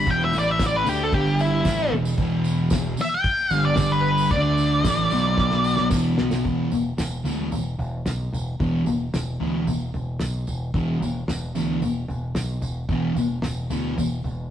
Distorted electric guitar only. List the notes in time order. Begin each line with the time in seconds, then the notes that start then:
0.07 E2 B2 E3
0.33 A2 E3 A3
0.85 D3 A3 D4
1.13 G2 D3 G3
1.65 A2 E3 A3
1.93 E2 B2
2.20 E2 B2 E3
2.74 E2 B2
2.99 muted distorted electric guitar stroke
3.52 G2 D3 G3
4.31 D3 A3 D4
4.85 A2 E3 A3
5.12 B2 F#3 B3
5.92 E2 B2 E3
6.17 B2 F#3 B3
6.44 E2 B2 E3
7.25 E2 B2 E3
8.60 E2 B2 E3
9.40 E2 B2 E3
10.75 E2 B2 E3
11.56 E2 B2 E3
12.90 E2 B2 E3
13.70 E2 B2 E3